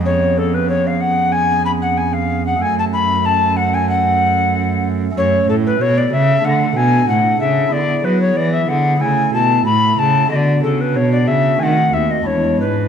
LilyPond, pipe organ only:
<<
  \new Staff \with { instrumentName = "Pipe organ" } { \time 4/4 \key fis \minor \tempo 4 = 93 <b cis' gis'>1 | <a cis' a'>1 | \key a \major <a cis' a'>2 <a d' a'>2 | <b e' gis'>2 <a e' a'>2 |
<b d' fis'>2 <a bis fis'>4 <gis d' e'>4 | }
  \new Staff \with { instrumentName = "Pipe organ" } { \clef bass \time 4/4 \key fis \minor eis,1 | fis,1 | \key a \major fis,8 a,8 b,8 cis8 d8 b,8 a,8 cis8 | d8 fis8 e8 d8 cis8 b,8 a,8 cis8 |
d8 cis8 b,8 cis8 dis8 dis,8 e,8 gis,8 | }
>>